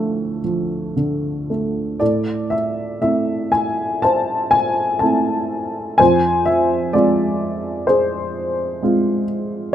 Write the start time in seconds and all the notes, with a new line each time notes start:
Already playing: D2 A2 D3 F3 A3 F5 A5
0.44 F3
0.96 D3
1.50 A3
2.00 A2 A4 D5
2.50 E5
3.01 A3 C4 E4 E5
3.52 G#5
4.02 C5 A5
4.51 G#5
4.99 A3 C4 E4 A5
5.98 F2 C5 G#5
6.46 E5
6.93 G#3 C4 F4 D5
7.87 G#4 C5
8.82 G#3 C4 F4